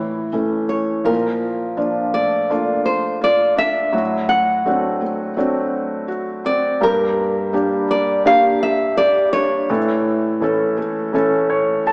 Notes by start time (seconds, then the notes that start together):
Already playing: A2 E3 C#5
0.00 E3
0.33 E3 A3 C#4
0.69 C#5
1.04 A#2 F3 F4 A#4
1.77 F3 A#3 D4 F4
2.14 A3 D5
2.50 A3 A#3 D4 F4
2.86 C5
3.22 F4 D5
3.56 D4 E5
3.92 A2 F#3 F#4
4.29 F#5
4.66 F#3 A3 C4 D4 F#4
5.02 A3
5.37 F#3 A3 C4 D4 F#4
6.08 F#4
6.45 C4 D5
6.81 G2 A#3 G4 A#4
7.53 G3 A#3 D4 G4
7.88 A#3 D5
8.25 G3 A#3 D4 G4 F5
8.63 E5
8.97 G4 D5
9.33 D4 C#5
9.70 A2 E3 A4
10.41 E3 A3 C#4 A4
10.78 A3
11.13 E3 A3 C#4 A4
11.50 C#5
11.87 A4 A5